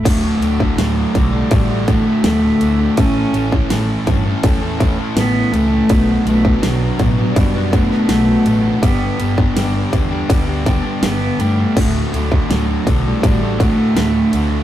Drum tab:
CC |x---------------|----------------|----------------|----------------|
RD |x-x-x-x-x-x-x-x-|x-x-x-x-x-x-x-x-|x-x-x-x-x-x-x-x-|x-x-x-x-x-x-x-x-|
SD |----o-------o---|----o-------o---|----o------oo---|----o-------o---|
BD |o--o--o-o-o-----|o--o--o-o-o-----|o--o--o-o-o-----|o--o--o-o-o-----|

CC |x---------------|
RD |--x-x-x-x-x-x-x-|
SD |----o-------o---|
BD |o--o--o-o-o-----|